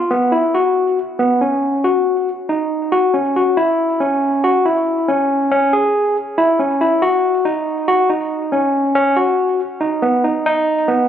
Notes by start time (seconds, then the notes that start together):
Already playing: F4
0.10 B3
0.32 E4
0.54 F#4
1.19 B3
1.41 C#4
1.84 F#4
2.49 D#4
2.92 F#4
3.14 C#4
3.36 F#4
3.57 E4
4.00 C#4
4.44 F#4
4.66 E4
5.08 C#4
5.51 C#4
5.73 G#4
6.38 E4
6.59 C#4
6.81 E4
7.02 F#4
7.45 D#4
7.88 F#4
8.10 D#4
8.52 C#4
8.95 C#4
9.16 F#4
9.81 D#4
10.02 B3
10.24 D#4
10.46 D#4
10.88 B3